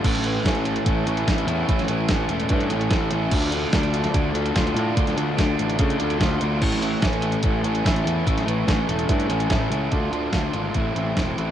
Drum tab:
CC |x---------------|----------------|x---------------|----------------|
HH |-xx-xxxxx-xxxxx-|xxx-x-xxxxxxx-x-|-xx-xxxxx-xxxxx-|xxx-x-xxxxxxx-x-|
SD |-o--o-------o---|-o--o-------o---|----o--o----o---|-o--o-------o---|
BD |o---o---o---o---|o---o---o---o---|o---o---o---o---|o---o---o---o---|

CC |x---------------|----------------|----------------|
HH |-xx-xxxxx-xxxxx-|xxx-x-xxxxxxx-x-|x-x-x-x-x-x-x-x-|
SD |-o--o-------o---|-o--o-------o---|----o-------o---|
BD |o---o---o---o---|o---o---o---o---|o---o---o---o---|